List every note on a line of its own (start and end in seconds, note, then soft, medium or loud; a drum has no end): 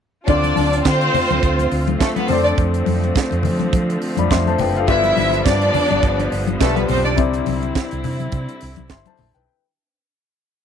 0.27 0.51 D2 medium
0.27 2.25 D3 medium
0.27 9.43 D3 medium
0.27 4.84 A3 medium
0.27 2.27 C4 medium
0.27 2.25 C4 medium
0.27 0.82 D4 loud
0.27 2.27 F4 medium
0.27 2.26 F4 medium
0.27 0.82 D5 loud
0.27 2.26 D5 medium
0.27 kick loud
0.27 closed hi-hat medium
0.27 muted conga soft
0.44 closed hi-hat soft
0.44 muted conga soft
0.56 0.80 D2 loud
0.56 open hi-hat medium
0.56 high conga medium
0.73 closed hi-hat medium
0.85 1.08 D3 loud
0.85 1.68 C4 loud
0.85 1.67 C5 loud
0.85 kick loud
0.85 snare loud
0.85 clap medium
0.85 closed hi-hat medium
0.85 muted conga soft
1.01 closed hi-hat soft
1.14 open hi-hat medium
1.14 low conga medium
1.30 1.40 D2 medium
1.30 closed hi-hat soft
1.30 high conga medium
1.43 1.66 D2 medium
1.43 kick medium
1.43 closed hi-hat medium
1.59 closed hi-hat medium
1.59 muted conga soft
1.71 1.94 D2 medium
1.71 open hi-hat medium
1.87 closed hi-hat soft
1.87 high conga medium
2.00 2.13 A3 medium
2.00 2.13 A4 medium
2.00 kick loud
2.00 snare loud
2.00 clap medium
2.00 closed hi-hat medium
2.00 muted conga soft
2.16 2.26 B3 medium
2.16 2.26 B4 medium
2.16 closed hi-hat soft
2.16 muted conga soft
2.16 high conga medium
2.28 2.52 F2 medium
2.28 7.14 F3 medium
2.28 4.55 F3 medium
2.28 2.41 C4 medium
2.28 4.85 C4 medium
2.28 4.56 C4 medium
2.28 3.99 A4 medium
2.28 2.41 C5 loud
2.28 open hi-hat medium
2.28 low conga medium
2.32 4.00 D5 medium
2.44 2.55 D4 medium
2.44 2.55 D5 medium
2.44 closed hi-hat soft
2.58 2.81 F2 medium
2.58 kick loud
2.58 closed hi-hat medium
2.74 closed hi-hat medium
2.86 3.10 F2 medium
2.86 open hi-hat medium
2.86 high conga medium
3.04 closed hi-hat medium
3.15 kick loud
3.15 snare loud
3.15 clap medium
3.15 closed hi-hat medium
3.15 muted conga soft
3.31 3.46 F2 medium
3.31 closed hi-hat soft
3.31 muted conga soft
3.43 3.67 F3 medium
3.43 open hi-hat medium
3.43 low conga medium
3.59 closed hi-hat soft
3.59 high conga medium
3.73 3.96 F3 loud
3.73 kick loud
3.73 closed hi-hat medium
3.73 muted conga soft
3.90 closed hi-hat medium
4.02 open hi-hat medium
4.17 4.28 F2 medium
4.17 4.30 D5 medium
4.17 4.30 B5 medium
4.17 closed hi-hat soft
4.17 high conga medium
4.31 4.53 F2 medium
4.31 4.46 E5 medium
4.31 4.46 C6 medium
4.31 kick loud
4.31 snare loud
4.31 clap medium
4.31 closed hi-hat medium
4.46 4.60 C5 medium
4.46 4.59 A5 medium
4.46 closed hi-hat soft
4.46 high conga medium
4.58 4.88 F#1 medium
4.58 4.76 B4 soft
4.58 4.75 G5 medium
4.58 open hi-hat medium
4.58 low conga medium
4.76 5.04 A4 soft
4.76 5.04 F5 medium
4.76 closed hi-hat soft
4.87 5.11 G1 medium
4.87 9.43 G3 medium
4.87 6.57 G3 medium
4.87 7.16 B3 medium
4.87 6.57 D4 medium
4.87 5.42 E4 medium
4.87 6.58 F4 medium
4.87 6.58 B4 medium
4.87 5.42 E5 loud
4.87 kick medium
4.87 closed hi-hat medium
5.04 closed hi-hat medium
5.04 muted conga soft
5.17 5.40 G1 loud
5.17 open hi-hat medium
5.17 high conga medium
5.33 closed hi-hat medium
5.45 5.68 G2 medium
5.45 6.28 D4 loud
5.45 6.28 D5 loud
5.45 kick loud
5.45 snare loud
5.45 clap medium
5.45 closed hi-hat medium
5.45 muted conga soft
5.61 closed hi-hat soft
5.74 open hi-hat medium
5.74 low conga medium
5.90 6.01 G1 medium
5.90 closed hi-hat soft
5.90 high conga medium
6.03 6.26 G1 medium
6.03 kick loud
6.03 closed hi-hat medium
6.03 muted conga soft
6.19 closed hi-hat medium
6.19 muted conga soft
6.32 6.55 G1 medium
6.32 open hi-hat medium
6.47 closed hi-hat soft
6.47 high conga medium
6.59 6.83 B1 medium
6.59 7.18 G3 medium
6.59 6.73 A3 medium
6.59 7.18 D4 soft
6.59 7.18 F4 soft
6.59 6.73 A4 loud
6.59 7.19 B4 medium
6.59 kick loud
6.59 snare loud
6.59 clap medium
6.59 closed hi-hat medium
6.76 6.86 B3 medium
6.76 6.87 B4 medium
6.76 closed hi-hat soft
6.76 muted conga soft
6.76 high conga medium
6.87 7.18 B1 medium
6.87 7.01 C4 medium
6.87 7.01 C5 medium
6.87 open hi-hat medium
6.87 low conga medium
7.04 7.15 D4 medium
7.04 7.15 D5 medium
7.04 closed hi-hat soft
7.16 7.41 C2 medium
7.16 9.43 C3 medium
7.16 9.43 C4 medium
7.16 9.46 C4 medium
7.16 9.44 E4 medium
7.16 9.46 E4 medium
7.16 8.88 D5 medium
7.16 kick loud
7.16 closed hi-hat medium
7.16 muted conga soft
7.33 closed hi-hat soft
7.46 7.70 C2 medium
7.46 open hi-hat medium
7.46 high conga medium
7.63 closed hi-hat medium
7.75 kick loud
7.75 snare loud
7.75 clap medium
7.75 closed hi-hat medium
7.75 muted conga soft
7.91 8.02 C2 medium
7.91 closed hi-hat soft
8.04 8.27 C3 medium
8.04 open hi-hat medium
8.04 low conga medium
8.20 closed hi-hat soft
8.20 high conga medium
8.32 8.45 C3 medium
8.32 kick loud
8.32 closed hi-hat medium
8.32 muted conga soft
8.49 closed hi-hat soft
8.61 8.75 C2 medium
8.61 open hi-hat medium
8.76 8.88 C2 medium
8.76 closed hi-hat soft
8.76 high conga medium
8.90 9.03 G1 loud
8.90 9.06 E5 medium
8.90 9.06 C6 medium
8.90 kick loud
8.90 snare medium
8.90 clap medium
8.90 closed hi-hat medium
8.90 muted conga soft
9.06 9.34 C5 medium
9.06 9.34 A5 medium
9.06 closed hi-hat soft
9.06 muted conga soft
9.06 high conga medium
9.17 9.32 A#1 medium
9.17 open hi-hat medium
9.17 low conga medium
9.35 9.45 B1 medium
9.35 9.62 B4 medium
9.35 9.62 G5 medium
9.35 closed hi-hat soft